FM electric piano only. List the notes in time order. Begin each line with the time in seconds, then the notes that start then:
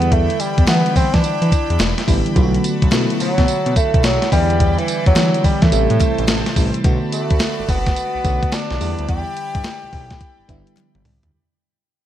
Already playing: D3 E3 G3 B3 E4
0.67 D3 E3 G3 B3 E4
2.07 D3 E3 G3 B3 E4
2.35 D3 F#3 A3 B3 F4
2.43 F#4
2.91 D3 F#3 A3 B3 E4
4.32 D3 E3 G3 B3 E4
5.16 D3 E3 G3 B3 E4
5.72 C3 E3 G3 A3 E4
6.56 C3 E3 G3 A3 E4
6.84 D3 A3 B3 F#4
8.24 D3 A3 B3 F#4
8.80 D3 G3 B3 E4
10.48 D3 G3 B3 E4